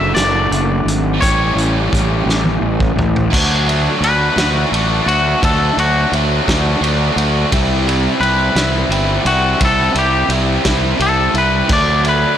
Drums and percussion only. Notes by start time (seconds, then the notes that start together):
0.16 snare, closed hi-hat
0.52 closed hi-hat
0.88 closed hi-hat
1.22 kick, closed hi-hat
1.58 closed hi-hat
1.93 kick, closed hi-hat
2.29 snare
2.45 high tom
2.80 kick
2.99 floor tom
3.16 floor tom
3.33 kick, crash
3.69 ride
4.03 ride
4.38 snare, ride
4.74 ride
5.08 ride
5.43 kick, ride
5.78 ride
6.13 ride
6.48 kick, snare, ride
6.84 ride
7.18 ride
7.52 kick, ride
7.89 ride
8.23 ride
8.56 snare, ride
8.92 ride
9.26 ride
9.61 kick, ride
9.95 ride
10.30 ride
10.65 kick, snare, ride
11.00 ride
11.34 ride
11.69 kick, crash
12.05 ride